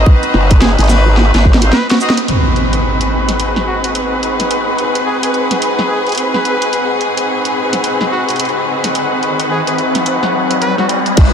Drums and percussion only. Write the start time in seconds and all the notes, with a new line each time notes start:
0.06 kick
0.23 closed hi-hat
0.34 snare
0.51 kick, closed hi-hat
0.62 snare
0.79 closed hi-hat
0.80 closed hi-hat
0.84 closed hi-hat
0.86 closed hi-hat
0.88 snare, closed hi-hat, shaker
1.17 snare
1.34 snare, closed hi-hat
1.45 kick
1.54 snare
1.62 closed hi-hat
1.73 snare
1.90 snare, closed hi-hat
2.01 shaker
2.10 snare
2.17 closed hi-hat
2.28 closed hi-hat
2.56 closed hi-hat
2.73 closed hi-hat
3.01 closed hi-hat
3.29 snare, closed hi-hat
3.40 closed hi-hat
3.56 snare
3.84 closed hi-hat
3.95 closed hi-hat
4.23 closed hi-hat
4.40 snare, closed hi-hat
4.51 closed hi-hat
4.78 closed hi-hat
4.95 closed hi-hat
5.23 closed hi-hat
5.34 closed hi-hat
5.51 snare, closed hi-hat
5.62 closed hi-hat
5.79 snare
6.07 closed hi-hat
6.09 closed hi-hat
6.12 closed hi-hat
6.15 closed hi-hat
6.18 closed hi-hat
6.34 snare
6.45 closed hi-hat
6.62 closed hi-hat
6.73 closed hi-hat
7.01 closed hi-hat
7.17 closed hi-hat
7.45 closed hi-hat
7.73 snare, closed hi-hat
7.84 closed hi-hat
8.01 snare
8.29 closed hi-hat
8.30 closed hi-hat
8.36 closed hi-hat
8.40 closed hi-hat
8.45 closed hi-hat
8.49 closed hi-hat
8.84 snare, closed hi-hat
8.95 closed hi-hat
9.23 closed hi-hat
9.40 closed hi-hat
9.67 closed hi-hat
9.78 closed hi-hat
9.95 snare, closed hi-hat
10.06 closed hi-hat
10.23 snare
10.51 closed hi-hat
10.62 closed hi-hat
10.78 snare
10.89 closed hi-hat
11.06 closed hi-hat
11.17 kick, closed hi-hat, crash